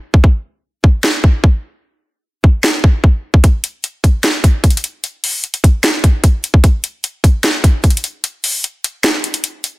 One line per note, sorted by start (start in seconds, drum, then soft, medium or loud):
0.14 kick loud
0.24 kick loud
0.84 kick loud
1.04 snare loud
1.24 kick loud
1.44 kick loud
2.44 kick loud
2.64 snare loud
2.84 kick loud
3.04 kick loud
3.34 kick loud
3.44 kick loud
3.44 closed hi-hat medium
3.64 closed hi-hat medium
3.84 closed hi-hat medium
4.04 kick loud
4.04 closed hi-hat medium
4.24 snare loud
4.24 closed hi-hat medium
4.44 kick medium
4.44 closed hi-hat medium
4.64 kick loud
4.64 closed hi-hat medium
4.70 closed hi-hat medium
4.77 closed hi-hat medium
4.84 closed hi-hat medium
5.04 closed hi-hat medium
5.24 open hi-hat medium
5.44 closed hi-hat medium
5.54 closed hi-hat medium
5.64 kick loud
5.64 closed hi-hat medium
5.84 snare loud
5.84 closed hi-hat medium
6.04 kick loud
6.04 closed hi-hat medium
6.24 kick loud
6.24 closed hi-hat medium
6.44 closed hi-hat medium
6.54 kick loud
6.64 kick loud
6.64 closed hi-hat medium
6.84 closed hi-hat medium
7.04 closed hi-hat medium
7.24 kick loud
7.24 closed hi-hat medium
7.44 snare loud
7.44 closed hi-hat medium
7.64 kick loud
7.64 closed hi-hat medium
7.84 kick loud
7.84 closed hi-hat medium
7.90 closed hi-hat medium
7.97 closed hi-hat medium
8.04 closed hi-hat medium
8.24 closed hi-hat medium
8.44 open hi-hat medium
8.64 closed hi-hat medium
8.84 closed hi-hat medium
9.04 snare loud
9.04 closed hi-hat medium
9.24 closed hi-hat medium
9.34 closed hi-hat medium
9.44 closed hi-hat medium
9.64 closed hi-hat medium